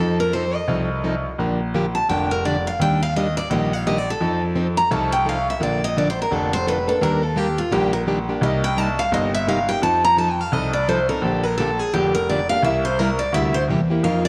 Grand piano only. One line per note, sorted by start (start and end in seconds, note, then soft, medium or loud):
0.00 0.53 F2 medium
0.68 1.24 C2 medium
1.38 1.95 A#1 medium
2.09 2.65 F1 medium
2.79 3.36 D#2 medium
3.50 4.06 A#1 medium
4.21 4.77 F2 medium
4.91 5.47 C2 medium
5.61 6.17 A#1 medium
6.31 6.87 F1 medium
7.01 7.58 D#2 medium
7.72 8.28 A#1 medium
8.41 8.98 C2 medium
9.12 9.68 G1 medium
9.82 10.38 F2 medium
10.52 11.08 C2 medium
11.21 11.78 A#1 medium
11.93 12.49 F1 medium
12.63 13.19 C2 medium
13.32 13.62 D2 medium
13.68 13.98 E2 medium
14.03 14.28 F2 medium